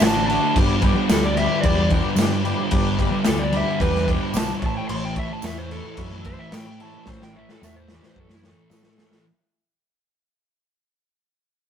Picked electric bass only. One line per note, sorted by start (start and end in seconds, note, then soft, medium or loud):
0.01 0.37 A1 medium
0.56 0.91 G1 loud
1.11 1.46 D2 medium
1.63 1.99 E2 loud
2.16 2.52 G2 medium
2.71 3.07 G1 loud
3.27 3.62 D2 medium
3.80 4.16 E2 medium
4.34 4.52 B1 loud
4.62 4.80 A1 loud
4.89 5.25 A1 loud
5.43 5.79 E2 medium
5.98 6.34 F#2 loud
6.53 6.88 A2 medium
7.08 7.44 A1 loud
7.62 7.98 E2 loud
8.16 8.52 F#2 medium
8.70 9.06 A2 medium